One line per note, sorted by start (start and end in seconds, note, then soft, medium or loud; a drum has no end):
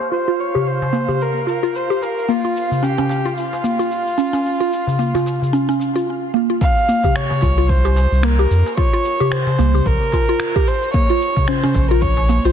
0.00 0.12 C5 loud
0.00 6.07 F5 medium
0.00 darbuka ka medium
0.00 cabasa soft
0.12 0.27 F4 medium
0.12 0.41 C5 loud
0.12 cabasa soft
0.28 0.54 F4 medium
0.28 cabasa soft
0.40 0.69 C#5 medium
0.40 cabasa medium
0.55 0.66 G4 medium
0.55 darbuka dum medium
0.55 cabasa soft
0.67 1.23 C5 loud
0.67 cabasa soft
0.82 darbuka tek medium
0.82 darbuka dum medium
0.82 cabasa soft
0.93 1.07 A#3 medium
0.93 darbuka tek medium
0.93 cabasa medium
1.08 1.20 G4 medium
1.08 darbuka dum medium
1.08 cabasa soft
1.21 1.48 A#4 medium
1.21 cabasa soft
1.37 cabasa soft
1.47 1.62 F4 medium
1.47 1.77 A#4 medium
1.47 cabasa medium
1.63 1.89 F4 loud
1.63 cabasa soft
1.75 2.04 C5 medium
1.75 cabasa soft
1.90 2.01 G4 medium
1.90 cabasa soft
2.01 2.31 A#4 medium
2.01 darbuka ka soft
2.01 cabasa medium
2.18 cabasa soft
2.29 2.43 A#3 medium
2.29 2.85 F4 loud
2.29 cabasa soft
2.45 2.55 F4 medium
2.45 cabasa soft
2.57 cabasa medium
2.71 darbuka dum medium
2.71 cabasa soft
2.83 2.97 C#4 medium
2.83 3.37 G4 medium
2.83 cabasa soft
2.98 3.24 C#4 loud
2.98 darbuka tek medium
2.98 darbuka dum medium
2.98 cabasa soft
3.09 darbuka tek medium
3.09 cabasa medium
3.25 3.36 F4 medium
3.25 cabasa soft
3.37 6.04 F4 medium
3.37 cabasa soft
3.53 darbuka tek medium
3.53 cabasa soft
3.64 3.78 A#3 medium
3.64 cabasa medium
3.79 3.90 F4 medium
3.79 cabasa soft
3.91 cabasa soft
4.07 cabasa soft
4.18 4.32 C#4 medium
4.18 cabasa medium
4.33 4.59 C#4 loud
4.33 darbuka ka medium
4.33 cabasa soft
4.46 cabasa soft
4.60 4.71 F4 loud
4.60 cabasa soft
4.73 cabasa medium
4.87 darbuka dum medium
4.87 cabasa soft
4.99 5.13 A#3 medium
4.99 cabasa soft
5.14 5.26 F4 medium
5.14 darbuka tek medium
5.14 darbuka dum medium
5.14 cabasa soft
5.26 darbuka tek medium
5.26 cabasa medium
5.42 darbuka dum medium
5.42 cabasa soft
5.53 5.68 C#4 medium
5.53 cabasa soft
5.69 5.94 C#4 loud
5.69 cabasa soft
5.80 darbuka ka soft
5.80 cabasa medium
5.96 6.07 F4 medium
5.96 cabasa soft
6.34 6.48 A#3 medium
6.50 6.61 F4 medium
6.61 7.17 F5 loud
6.61 kick loud
6.61 cabasa soft
6.78 cabasa soft
6.89 7.03 A#3 medium
6.89 cabasa medium
7.04 7.15 G4 medium
7.04 kick medium
7.04 darbuka dum medium
7.04 cabasa soft
7.15 7.71 C#5 loud
7.15 finger snap loud
7.15 cabasa soft
7.30 darbuka tek medium
7.30 darbuka dum medium
7.30 cabasa soft
7.41 8.07 C2 loud
7.41 7.57 F4 medium
7.41 kick medium
7.41 darbuka tek medium
7.41 cabasa medium
7.58 7.83 F4 medium
7.58 cabasa soft
7.69 8.25 C5 loud
7.69 kick loud
7.69 cabasa soft
7.85 7.96 G4 loud
7.85 darbuka tek medium
7.85 cabasa soft
7.96 darbuka tek medium
7.96 cabasa medium
8.12 8.46 C2 medium
8.12 cabasa soft
8.23 8.37 A#3 medium
8.23 8.77 A#4 loud
8.23 finger snap loud
8.23 cabasa soft
8.39 8.50 G4 medium
8.39 darbuka tek soft
8.39 cabasa soft
8.51 8.63 F2 medium
8.51 cabasa medium
8.66 darbuka ka medium
8.66 cabasa soft
8.77 8.92 F4 medium
8.77 9.34 C#5 loud
8.77 kick loud
8.77 cabasa soft
8.93 9.19 F4 loud
8.93 cabasa soft
9.05 cabasa medium
9.20 9.31 G4 loud
9.20 darbuka dum loud
9.20 cabasa soft
9.32 9.88 C5 loud
9.32 finger snap loud
9.32 cabasa soft
9.47 darbuka tek medium
9.47 darbuka dum medium
9.47 cabasa soft
9.59 9.81 C2 loud
9.59 9.73 A#3 medium
9.59 darbuka tek medium
9.59 cabasa medium
9.74 9.85 G4 medium
9.74 darbuka dum medium
9.74 cabasa soft
9.86 9.98 A#1 medium
9.86 10.69 A#4 loud
9.86 kick loud
9.86 cabasa soft
10.02 cabasa soft
10.12 10.28 F4 medium
10.12 kick medium
10.12 darbuka tek medium
10.12 cabasa medium
10.29 10.54 F4 loud
10.29 cabasa soft
10.40 finger snap loud
10.40 cabasa soft
10.55 10.66 G4 loud
10.55 kick loud
10.55 darbuka ka soft
10.55 cabasa soft
10.67 10.93 C5 loud
10.67 darbuka ka medium
10.67 cabasa medium
10.83 cabasa soft
10.94 11.08 A#3 medium
10.94 11.49 C#5 loud
10.94 kick loud
10.94 cabasa soft
11.10 11.20 F4 medium
11.10 cabasa soft
11.21 cabasa medium
11.36 kick medium
11.36 darbuka dum loud
11.36 cabasa soft
11.48 11.62 C#4 medium
11.48 11.90 C5 loud
11.48 finger snap loud
11.48 cabasa soft
11.63 11.89 C#4 loud
11.63 darbuka tek medium
11.63 darbuka dum medium
11.63 cabasa soft
11.75 12.39 A#1 loud
11.75 kick loud
11.75 darbuka tek medium
11.75 cabasa medium
11.90 12.02 F4 medium
11.90 12.03 A#4 medium
11.90 cabasa soft
12.01 12.46 C#5 loud
12.01 kick loud
12.01 cabasa soft
12.17 darbuka tek medium
12.17 cabasa soft
12.29 12.43 A#3 medium
12.29 darbuka tek medium
12.29 cabasa medium
12.44 12.52 A#1 medium
12.44 12.52 F4 medium
12.44 12.52 C5 loud
12.44 cabasa soft